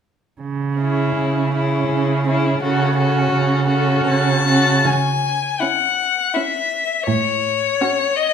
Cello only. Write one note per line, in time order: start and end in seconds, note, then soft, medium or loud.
0.42 1.08 C#3 soft
1.16 1.80 C#3 soft
1.88 2.51 C#3 soft
2.59 3.23 C#3 medium
3.32 3.97 C#3 soft
4.05 4.76 C#3 medium
4.85 5.45 C#3 soft
7.08 7.65 A2 medium